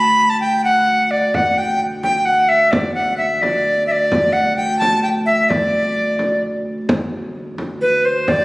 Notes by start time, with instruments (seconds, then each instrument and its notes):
Already playing: viola da gamba D2, recorder B5
0.30 recorder A5
0.40 recorder G5
0.64 recorder F#5
1.11 recorder D5
1.33 viola da gamba D2, recorder F#5, frame drum
1.58 recorder G5, frame drum
2.03 recorder G5, frame drum
2.25 recorder F#5, frame drum
2.49 recorder E5
2.71 recorder D5, frame drum
2.94 recorder F#5, frame drum
3.18 recorder E5
3.42 recorder D5, frame drum
3.65 frame drum
3.87 recorder E5
3.92 recorder D5
4.12 frame drum
4.33 recorder F#5, frame drum
4.56 recorder G5
4.79 recorder A5, frame drum
5.03 recorder G5, frame drum
5.26 recorder E5
5.49 recorder D5, frame drum
5.74 frame drum
6.19 frame drum
6.89 viola da gamba D2, frame drum
7.35 frame drum
7.58 frame drum
7.81 recorder B4, frame drum
8.05 recorder C5
8.28 recorder D5, frame drum